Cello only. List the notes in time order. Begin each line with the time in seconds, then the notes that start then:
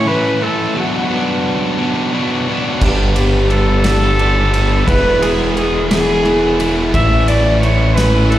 0.07 B4
0.43 A4
0.77 F#4
2.81 G4
3.16 G4
3.50 A4
4.87 B4
5.22 G#4
5.55 G#4
5.91 G#4
6.94 E5
7.28 D5
7.62 C#5
7.95 B4
8.30 A4